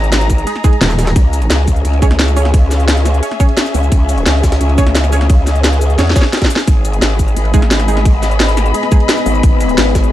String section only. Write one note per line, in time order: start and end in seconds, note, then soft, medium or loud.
0.00 1.16 G#4 medium
0.00 1.16 D#5 medium
0.00 2.32 A#5 loud
1.16 7.19 C#4 medium
1.21 10.12 G#4 medium
1.66 6.68 E5 medium
6.83 10.12 D#5 medium
6.94 10.12 B5 medium